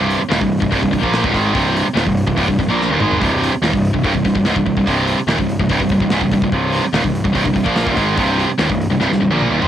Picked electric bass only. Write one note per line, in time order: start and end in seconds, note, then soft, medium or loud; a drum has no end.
0.00 0.18 C1 medium
0.19 muted picked electric bass stroke soft
0.30 0.40 D#1 medium
0.42 0.60 C1 medium
0.62 0.71 C1 medium
0.72 0.81 C1 medium
0.84 0.92 C1 medium
0.93 1.03 C1 medium
1.04 1.23 A#1 loud
1.24 1.33 D#1 medium
1.34 1.53 G#1 medium
1.55 1.84 C1 medium
1.85 muted picked electric bass stroke soft
1.95 2.05 D#1 medium
2.07 2.26 C1 medium
2.27 2.37 C1 medium
2.38 2.47 C1 medium
2.49 2.58 C1 medium
2.59 2.67 C1 medium
2.68 2.87 A#1 medium
2.89 2.99 D#1 medium
3.00 3.19 G#1 medium
3.21 3.50 C1 medium
3.52 muted picked electric bass stroke soft
3.62 3.71 D#1 medium
3.74 3.92 C1 medium
3.94 4.03 C1 medium
4.05 4.14 C1 medium
4.15 4.24 C1 medium
4.25 4.34 C1 medium
4.36 4.45 C1 medium
4.46 4.55 C#1 loud
4.56 4.65 C1 medium
4.67 4.76 C1 medium
4.76 4.86 C1 medium
4.87 5.16 C1 loud
5.17 muted picked electric bass stroke soft
5.27 5.37 D#1 medium
5.39 5.58 C1 medium
5.59 5.69 C1 medium
5.70 5.79 C1 medium
5.80 5.89 C1 medium
5.90 5.99 C1 medium
6.01 6.10 C1 medium
6.11 6.20 C#1 loud
6.21 6.31 C1 medium
6.32 6.41 C1 medium
6.41 6.51 C1 medium
6.52 6.81 C1 loud
6.83 muted picked electric bass stroke soft
6.93 7.03 D#1 medium
7.04 7.23 C1 medium
7.25 7.34 C1 medium
7.35 7.45 C1 loud
7.46 7.55 C1 medium
7.55 7.65 C1 medium
7.66 7.85 A#1 loud
7.87 7.96 D#1 medium
7.97 8.16 G#1 medium
8.18 8.47 C1 loud
8.48 muted picked electric bass stroke soft
8.60 8.69 D#1 medium
8.70 8.89 C1 medium
8.90 8.97 C1 medium
8.98 9.08 C1 medium
9.11 9.20 C1 medium
9.20 9.29 C1 medium
9.30 9.49 A#1 medium
9.50 9.60 D#1 medium
9.63 9.68 G#1 loud